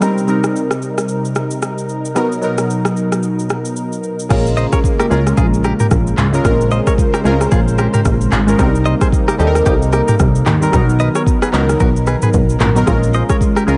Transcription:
Already playing: analog synth pad A#4
0.00 analog synth pad C3 D#4, synth keys G3 C4 D#4 A#4, cross-stick, shaker
0.18 shaker
0.27 synth keys G3 C4 D#4 A#4, shaker
0.44 cross-stick, shaker
0.56 shaker
0.71 cross-stick, shaker
0.82 shaker
0.98 cross-stick, shaker
1.08 shaker
1.25 shaker
1.35 cross-stick, shaker
1.51 shaker
1.62 cross-stick, shaker
1.78 shaker
1.89 shaker
2.05 shaker
2.15 analog synth pad B2, synth keys F#3 B3 D#4 A#4, cross-stick, shaker
2.32 shaker
2.41 synth keys F#3 B3 D#4 A#4, shaker
2.58 cross-stick, shaker
2.70 shaker
2.85 cross-stick, shaker
2.97 shaker
3.12 cross-stick, shaker
3.23 shaker
3.39 shaker
3.50 cross-stick, shaker
3.65 shaker
3.76 shaker
3.92 shaker
4.03 shaker
4.19 shaker
4.29 analog synth bass A#1, analog synth pad C#3 G#3 A#3, synth keys G#3 C#4 F4 A#4, kick, cross-stick, crash, shaker
4.47 shaker
4.57 clean electric guitar C5 D#5, shaker
4.72 clean electric guitar A#4 C#5, kick, cross-stick, shaker
4.84 kick, shaker
4.99 clean electric guitar G4 A#4, cross-stick, shaker
5.10 analog synth bass C#2, synth keys G#3 C#4 F4 A#4, clean electric guitar F4 G#4, shaker
5.27 cross-stick, shaker
5.37 analog synth bass A#1, clean electric guitar F4 G#4, kick, shaker
5.54 shaker
5.64 clean electric guitar G4 A#4, cross-stick, shaker
5.80 clean electric guitar G4 A#4, mid tom, shaker
5.91 analog synth bass A#1, kick, cross-stick, shaker
6.07 shaker
6.18 analog synth bass C#2, clean electric guitar F4 G#4, clap, mid tom, shaker
6.32 synth keys G#3 C#4 F4 A#4, shaker
6.44 analog synth bass A#1, synth keys G#3 C4 F4 A#4, analog synth pad C5, kick, cross-stick, shaker
6.51 synth keys C#4
6.61 shaker
6.71 clean electric guitar C5 D#5, shaker
6.87 clean electric guitar A#4 C#5, kick, cross-stick, shaker
6.98 kick, shaker
7.14 clean electric guitar G4 A#4, cross-stick, shaker
7.24 analog synth bass C#2, synth keys G#3 C4 F4 A#4, clean electric guitar F4 G#4, shaker
7.31 synth keys C#4
7.41 cross-stick, shaker
7.51 analog synth bass A#1, clean electric guitar F4 G#4, kick, shaker
7.68 shaker
7.78 clean electric guitar G4 A#4, cross-stick, shaker
7.94 clean electric guitar G4 A#4, mid tom, shaker
8.05 analog synth bass A#1, kick, cross-stick, shaker
8.21 shaker
8.32 analog synth bass G#1, clean electric guitar F4 G#4, clap, mid tom, shaker
8.47 synth keys G#3 C#4 F4 A#4, shaker
8.58 analog synth bass C2, analog synth pad C3 A#3 D#4, synth keys G3 C4 D#4 A#4, kick, cross-stick, shaker
8.75 shaker
8.85 clean electric guitar C5 D#5, shaker
9.01 clean electric guitar G#4 C5, kick, cross-stick, shaker
9.12 kick, shaker
9.28 clean electric guitar G4 A#4, cross-stick, shaker
9.38 analog synth bass D#2, synth keys G3 C4 D#4 A4, clean electric guitar D#4 G4, shaker
9.47 synth keys A#4
9.55 cross-stick, shaker
9.66 analog synth bass C2, clean electric guitar D#4 G4, kick, shaker
9.82 shaker
9.93 clean electric guitar G4 A#4, cross-stick, shaker
10.08 clean electric guitar G4 A#4, mid tom, shaker
10.19 analog synth bass C2, kick, cross-stick, shaker
10.35 shaker
10.46 analog synth bass D#2, clean electric guitar D#4 G4, clap, mid tom, shaker
10.61 synth keys G3 C4 D#4 A#4, shaker
10.72 analog synth bass B1, analog synth pad D#3 B3 A#4, synth keys F#3 B3 D#4 A#4, kick, cross-stick, shaker
10.89 shaker
11.00 clean electric guitar B4 D#5, shaker
11.15 clean electric guitar A#4 C#5, cross-stick, shaker
11.26 kick, shaker
11.42 clean electric guitar G#4 B4, cross-stick, shaker
11.52 analog synth bass C#2, synth keys F#3 B3 D#4 A#4, clean electric guitar F#4 A#4, clap, shaker
11.69 cross-stick, shaker
11.80 analog synth bass B1, clean electric guitar F#4 A#4, kick, shaker
11.96 shaker
12.07 clean electric guitar G#4 B4, cross-stick, shaker
12.22 clean electric guitar G#4 B4, mid tom, shaker
12.33 analog synth bass B1, kick, shaker
12.49 shaker
12.60 analog synth bass A#1, clean electric guitar F#4 A#4, clap, mid tom, shaker
12.75 synth keys F#3 B3 D#4 A#4, shaker
12.86 analog synth bass A#1, analog synth pad C#3 G#3, synth keys G#3 C#4 F4 A#4, kick, cross-stick, shaker
13.03 shaker
13.14 clean electric guitar C5 D#5, shaker
13.29 clean electric guitar A#4 C#5, kick, cross-stick, shaker
13.41 kick, shaker
13.56 clean electric guitar G4 A#4, cross-stick, shaker
13.67 analog synth bass C#2, synth keys G#3 C#4 F4 A#4, clean electric guitar F4 G#4, shaker

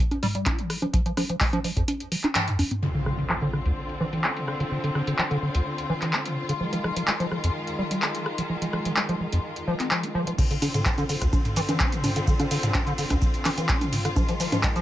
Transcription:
0.11 closed hi-hat, high conga
0.23 acid bass G3, mid tom, open hi-hat
0.35 acid bass G3, closed hi-hat
0.46 acid bass F4, kick, clap, closed hi-hat, high conga
0.58 acid bass D#3, closed hi-hat
0.70 acid bass F3, cross-stick, open hi-hat
0.82 acid bass F3, closed hi-hat, high conga
0.93 acid bass F3, kick, closed hi-hat
1.06 acid bass F3, closed hi-hat
1.17 acid bass F3, cross-stick, open hi-hat, high conga
1.29 acid bass F3, closed hi-hat
1.41 acid bass G#3, kick, clap, open hi-hat
1.53 acid bass F3, closed hi-hat, high conga
1.64 acid bass F3, open hi-hat
1.76 acid bass F2, kick, closed hi-hat
1.88 closed hi-hat, high conga
2.00 closed hi-hat
2.12 acid bass F3, open hi-hat
2.24 acid bass D#4, clap, closed hi-hat, high conga
2.35 acid bass F3, clap, closed hi-hat, mid tom
2.47 acid bass F2, closed hi-hat
2.59 acid bass F2, open hi-hat, high conga
2.71 acid bass C4, closed hi-hat, mid tom
2.82 acid bass D3, string section D3 C4 F4, impact
2.95 acid bass D3, closed hi-hat
3.06 acid bass D3, cross-stick
3.18 acid bass D3, closed hi-hat
3.30 acid bass F3, clap
3.42 acid bass D3, closed hi-hat
3.53 acid bass D3, cross-stick
3.65 acid bass D2, closed hi-hat
3.89 closed hi-hat
4.00 acid bass E3
4.13 acid bass E3, closed hi-hat
4.24 acid bass D4, clap
4.36 acid bass C3, closed hi-hat
4.48 acid bass D3, cross-stick
4.60 acid bass D3, closed hi-hat
4.71 acid bass D3
4.84 acid bass D3, closed hi-hat
4.95 acid bass D3, cross-stick
5.07 acid bass D3, closed hi-hat
5.19 acid bass F3, clap
5.31 acid bass D3, closed hi-hat
5.42 acid bass D3
5.55 acid bass D2, closed hi-hat
5.78 closed hi-hat
5.90 acid bass E3
6.02 acid bass E3, clap, closed hi-hat
6.13 acid bass D4, clap
6.25 acid bass C3, closed hi-hat
6.37 acid bass D3
6.49 acid bass D3, closed hi-hat
6.60 string section D#3 G#3, acid bass F3
6.73 acid bass F3, closed hi-hat
6.84 acid bass F3, cross-stick
6.96 acid bass F3, closed hi-hat
7.08 acid bass G#3, clap
7.20 acid bass F3, closed hi-hat
7.31 acid bass F3, cross-stick
7.44 acid bass F2, closed hi-hat
7.67 closed hi-hat
7.79 acid bass G3
7.91 acid bass G3, closed hi-hat
8.02 acid bass F4, clap
8.14 acid bass D#3, closed hi-hat
8.26 acid bass F3, cross-stick
8.38 acid bass F3, closed hi-hat
8.49 acid bass F3
8.62 acid bass F3, closed hi-hat
8.73 acid bass F3, cross-stick
8.85 acid bass F3, closed hi-hat
8.96 acid bass G#3, clap
9.09 acid bass F3, closed hi-hat
9.20 acid bass F3
9.33 acid bass F2, closed hi-hat
9.56 closed hi-hat
9.67 acid bass F3
9.80 acid bass C4, clap, closed hi-hat
9.91 acid bass F3, clap
10.03 acid bass F4, closed hi-hat
10.15 acid bass F3
10.27 acid bass F3, closed hi-hat
10.38 acid bass D3, string section D3 C4 F4, kick, crash, ride, cabasa
10.51 acid bass D3, closed hi-hat, cabasa
10.62 acid bass D3, open hi-hat, ride, high conga, cabasa
10.74 acid bass D3, closed hi-hat, mid tom, cabasa
10.85 acid bass F3, kick, clap, ride, cabasa
10.98 acid bass D3, closed hi-hat, high conga, cabasa
11.09 acid bass D3, open hi-hat, ride, cabasa
11.21 acid bass D2, kick, cross-stick, closed hi-hat, cabasa
11.33 kick, ride, high conga, cabasa
11.45 closed hi-hat, mid tom, cabasa
11.56 acid bass E3, open hi-hat, ride, cabasa
11.69 acid bass E3, closed hi-hat, high conga, cabasa
11.80 acid bass D4, kick, clap, ride, cabasa
11.92 acid bass C3, closed hi-hat, cabasa
12.04 acid bass D3, mid tom, open hi-hat, ride, high conga, cabasa
12.16 acid bass D3, closed hi-hat, cabasa
12.27 acid bass D3, kick, ride, cabasa
12.40 acid bass D3, closed hi-hat, high conga, cabasa
12.51 acid bass D3, open hi-hat, ride, cabasa
12.63 acid bass D3, closed hi-hat, mid tom, cabasa
12.74 acid bass F3, kick, clap, ride, high conga, cabasa
12.87 acid bass D3, closed hi-hat, cabasa
12.98 acid bass D3, open hi-hat, ride, cabasa
13.10 acid bass D2, kick, cross-stick, closed hi-hat, high conga, cabasa
13.22 kick, ride, cabasa
13.34 closed hi-hat, cabasa
13.45 acid bass E3, cross-stick, clap, open hi-hat, ride, high conga, cabasa
13.58 acid bass E3, closed hi-hat, cabasa
13.69 acid bass D4, kick, clap, ride, cabasa
13.81 acid bass C3, closed hi-hat, high conga, cabasa
13.93 acid bass D3, mid tom, open hi-hat, ride, cabasa
14.05 acid bass D3, cross-stick, closed hi-hat, cabasa
14.16 string section D#3 G#3, acid bass F3, kick, ride, high conga, cabasa
14.29 acid bass F3, closed hi-hat, cabasa
14.40 acid bass F3, open hi-hat, ride, cabasa
14.52 acid bass F3, closed hi-hat, mid tom, high conga, cabasa
14.63 acid bass G#3, kick, clap, ride, cabasa
14.76 acid bass F3, closed hi-hat, cabasa

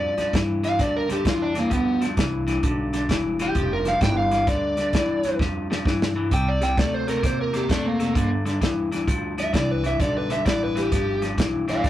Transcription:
Already playing: upright bass F2, clean electric guitar G2 F3, electric slide guitar D5
0.17 clean electric guitar G2 F3, muted upright bass stroke, snare, closed hi-hat
0.33 upright bass G2, clean electric guitar G2 E3, kick, snare, closed hi-hat
0.63 clean electric guitar G2 E3, electric slide guitar F5, snare, closed hi-hat
0.78 upright bass D2, clean electric guitar G2 D3, electric slide guitar D5, kick, snare, closed hi-hat
0.96 electric slide guitar A#4
1.09 clean electric guitar G2 D3, electric slide guitar G4, muted upright bass stroke, snare, closed hi-hat
1.25 upright bass F2, clean electric guitar G2 E3, electric slide guitar F4, kick, snare, closed hi-hat
1.42 electric slide guitar D4
1.54 clean electric guitar G2 E3, snare, closed hi-hat
1.59 electric slide guitar A#3
1.70 upright bass D2, clean electric guitar G2 F3, electric slide guitar B3, kick, closed hi-hat
2.01 clean electric guitar G2 F3, snare, closed hi-hat
2.17 upright bass C2, clean electric guitar G2 E3, kick, snare, closed hi-hat
2.47 clean electric guitar G2 E3, snare, closed hi-hat
2.63 upright bass B1, clean electric guitar G2 D3, kick, closed hi-hat
2.93 clean electric guitar G2 D3, snare, closed hi-hat
3.09 upright bass E1, clean electric guitar G2 E3, kick, snare, closed hi-hat
3.39 clean electric guitar G2 E3, electric slide guitar G4, snare, closed hi-hat
3.55 upright bass F1, clean electric guitar G2 F3, kick, closed hi-hat
3.73 electric slide guitar A#4
3.85 clean electric guitar G2 F3, electric slide guitar F5, snare, closed hi-hat
4.01 upright bass G1, clean electric guitar G2 E3, electric slide guitar G5, kick, snare, closed hi-hat
4.17 electric slide guitar F5
4.31 clean electric guitar G2 E3, snare, closed hi-hat
4.47 upright bass D2, clean electric guitar G2 D3, electric slide guitar D5, kick, snare, closed hi-hat
4.77 clean electric guitar G2 D3, snare, closed hi-hat
4.93 upright bass E2, clean electric guitar G2 E3, kick, snare, closed hi-hat
5.23 clean electric guitar G2 E3, muted upright bass stroke, snare, closed hi-hat
5.39 upright bass F2, clean electric guitar G2 F3, kick, snare
5.70 clean electric guitar G2 F3, snare
5.85 clean electric guitar G2 E3, upright bass G2, kick, snare
6.02 snare
6.15 clean electric guitar G2 E3
6.31 upright bass C2, clean electric guitar C3 G3, electric slide guitar G5, kick, closed hi-hat
6.48 electric slide guitar D5
6.61 clean electric guitar C3 G3, electric slide guitar G5, snare, closed hi-hat
6.77 upright bass D2, clean electric guitar C3 A3, electric slide guitar D5, kick, snare, closed hi-hat
6.94 electric slide guitar C5
7.07 clean electric guitar C3 A3, electric slide guitar A#4, snare, closed hi-hat
7.23 upright bass E2, clean electric guitar C3 A#3, electric slide guitar C5, kick, snare, closed hi-hat
7.41 electric slide guitar A#4
7.53 clean electric guitar C3 A#3, electric slide guitar G4, snare, closed hi-hat
7.69 upright bass F2, clean electric guitar C3 A3, electric slide guitar D4, kick, snare, closed hi-hat
7.86 electric slide guitar A#3
7.99 clean electric guitar C3 A3, snare, closed hi-hat
8.15 clean electric guitar G2 D3, upright bass G2, kick, closed hi-hat
8.45 clean electric guitar G2 D3, snare, closed hi-hat
8.61 upright bass E2, clean electric guitar G2 E3, kick, snare, closed hi-hat
8.92 clean electric guitar G2 E3, snare, closed hi-hat
9.07 upright bass D2, clean electric guitar G2 F3, kick, closed hi-hat
9.38 clean electric guitar G2 F3, electric slide guitar E5, snare, closed hi-hat
9.53 upright bass C2, clean electric guitar G2 E3, electric slide guitar D5, kick, snare, closed hi-hat
9.71 electric slide guitar B4
9.84 clean electric guitar G2 E3, electric slide guitar E5, snare, closed hi-hat
10.00 upright bass B1, clean electric guitar G2 D3, electric slide guitar D5, kick, snare, closed hi-hat
10.17 electric slide guitar B4
10.30 clean electric guitar G2 D3, electric slide guitar E5, snare, closed hi-hat
10.45 upright bass A1, clean electric guitar G2 E3, electric slide guitar D5, kick, snare, closed hi-hat
10.63 electric slide guitar B4
10.75 clean electric guitar G2 E3, electric slide guitar G4, snare, closed hi-hat
10.92 upright bass G1, clean electric guitar G2 F3, kick, snare, closed hi-hat
11.22 clean electric guitar G2 F3, snare, closed hi-hat
11.37 upright bass B1, clean electric guitar G2 E3, kick, snare, closed hi-hat
11.68 clean electric guitar G2 E3, electric slide guitar D5 F5, snare, closed hi-hat
11.83 upright bass D2, clean electric guitar G2 D3, electric slide guitar F4 D5, kick, snare, closed hi-hat

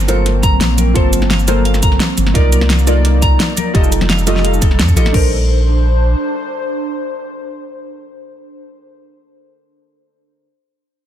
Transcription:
Already playing: sub bass G1, analog synth pad F#3 A#3 C4, synth stab F4 A#4 C5 A5
0.08 synth stab F4 A4 A#4 C5, clean electric guitar A4, closed hi-hat, high bongo, shaker
0.26 snare, closed hi-hat
0.43 clean electric guitar A#5, kick, closed hi-hat, shaker
0.61 sub bass A#1, snare, closed hi-hat
0.78 clean electric guitar A#4, closed hi-hat, high conga, shaker
0.94 sub bass G1, synth stab A#3 F4 C5 A5, clean electric guitar A4, kick, closed hi-hat
1.13 closed hi-hat, shaker
1.22 snare, high bongo
1.30 clean electric guitar F5, snare, closed hi-hat
1.39 shaker
1.47 clean electric guitar A#3, synth stab F4 A4 A#4 C5, closed hi-hat, high bongo, shaker
1.65 clean electric guitar F5, closed hi-hat
1.74 snare, shaker
1.83 clean electric guitar A#5, kick, closed hi-hat, shaker
1.92 snare
2.00 snare, closed hi-hat
2.17 sub bass G1, closed hi-hat, high conga, shaker
2.27 snare
2.34 sub bass C2, analog synth pad A#3 D#4 D5, synth stab D#4 F4 A#4 D5, clean electric guitar A#4, kick, closed hi-hat
2.52 clean electric guitar A#4, closed hi-hat, shaker
2.61 snare, high bongo
2.70 snare, closed hi-hat
2.79 shaker
2.87 synth stab D#4 F4 A#4 D5, clean electric guitar A4, closed hi-hat, high bongo, shaker
3.05 snare, closed hi-hat
3.22 clean electric guitar A#5, kick, closed hi-hat, shaker
3.40 snare, closed hi-hat
3.57 clean electric guitar A#4, closed hi-hat, high conga, shaker
3.74 sub bass F1, analog synth pad G3 A4, synth stab F4 G4 A4 D#5, clean electric guitar A4, kick, closed hi-hat
3.84 shaker
3.92 closed hi-hat, shaker
4.01 snare, high bongo, high conga
4.10 clean electric guitar F5, snare, closed hi-hat
4.19 shaker
4.27 clean electric guitar A3, synth stab F4 G4 A4 D#5, closed hi-hat, high bongo, shaker
4.36 snare
4.45 clean electric guitar F5, closed hi-hat
4.54 shaker
4.62 sub bass F1, clean electric guitar A4, kick, closed hi-hat, shaker
4.71 snare
4.79 sub bass F2, clean electric guitar A4, snare, closed hi-hat
4.88 kick, shaker
4.96 sub bass A1, synth stab F4 G4 A4 D#5, clean electric guitar A4, closed hi-hat, high conga, shaker
5.05 snare, high conga
5.12 sub bass A#1, synth stab D4 A4 A#4 C5, analog synth pad D4 C5, clean electric guitar A#4, kick, crash

